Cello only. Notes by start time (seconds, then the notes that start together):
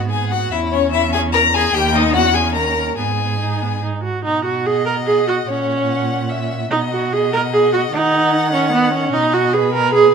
Already playing: G#2
0.52 E2
1.74 D#2
2.15 E2
2.55 D#2
2.98 G#2
4.25 B2
5.49 A#2
6.71 B2
7.93 D#3
9.14 B2